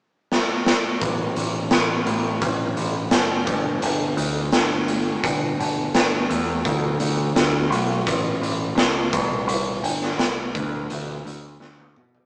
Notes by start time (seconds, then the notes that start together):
0.32 snare
0.66 snare
1.01 A1, kick, closed hi-hat
1.36 A1, closed hi-hat
1.71 A1, snare, closed hi-hat
2.06 A1, closed hi-hat
2.41 A1, kick, closed hi-hat
2.77 A1, closed hi-hat
3.11 F#1, snare, closed hi-hat
3.47 G1, kick, closed hi-hat
3.82 G1, closed hi-hat
4.17 D2, closed hi-hat
4.52 G1, snare, closed hi-hat
4.88 closed hi-hat
5.24 G1, kick, closed hi-hat
5.60 G1, closed hi-hat
5.94 G1, snare, closed hi-hat
6.30 E2, closed hi-hat
6.65 D2, kick, closed hi-hat
7.00 D2, closed hi-hat
7.36 D2, snare, closed hi-hat
7.70 B1, closed hi-hat
8.07 A1, kick, closed hi-hat
8.41 A1, closed hi-hat
8.75 C#2, snare, closed hi-hat
9.13 C2, kick, closed hi-hat
9.47 C2, closed hi-hat
9.83 G1, closed hi-hat
10.01 snare
10.18 C2, snare, closed hi-hat
10.55 D2, kick, closed hi-hat
10.90 D2, closed hi-hat
11.25 D2, closed hi-hat
11.60 D2, snare
11.79 high tom
11.96 B2, mid tom
12.14 floor tom